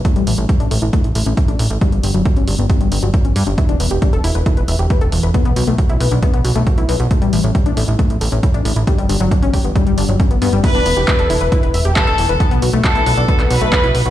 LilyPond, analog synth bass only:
\new Staff \with { instrumentName = "Analog synth bass" } { \clef bass \time 4/4 \key b \minor \tempo 4 = 136 r16 a,,16 a,,16 a,,16 r16 a,,16 a,,16 a,,16 r16 a,,16 a,,16 a,,16 r16 a,,16 a,,16 a,,16 | r16 g,,16 g,,16 g,,16 r16 g,,16 g,,16 g,,16 r16 g,,16 g,,16 g,,16 r16 g,,16 g,16 g,,16 | r16 e,,16 e,,16 e,,16 r16 e,,16 e,,16 e,,16 r16 e,,16 e,,16 e,,16 r16 e,,16 e,,16 e,,16 | r16 b,,16 b,,16 b,,16 r16 b,,16 b,,16 b,,16 r16 b,,16 b,,16 b,,16 r16 b,,16 b,,16 b,,16 |
r16 a,,16 a,,16 a,,16 r16 a,,16 a,,16 a,,16 r16 a,,16 a,,16 a,,16 r16 a,,16 a,,16 a,,16 | r16 g,,16 g,,16 g,,16 r16 g,,16 g,,16 g,,16 r16 g,,16 g,,16 g,,16 r16 g,,16 g,16 g,,16 | r16 e,,16 e,,16 e,,16 r16 e,,16 e,,16 e,,16 r16 e,,16 e,,16 e,,16 r16 e,,16 e,,16 e,,16 | r16 b,,16 b,,16 b,,16 r16 b,,16 b,,16 b,,16 r16 b,,16 b,,16 b,,16 r16 b,,16 b,,16 b,,16 | }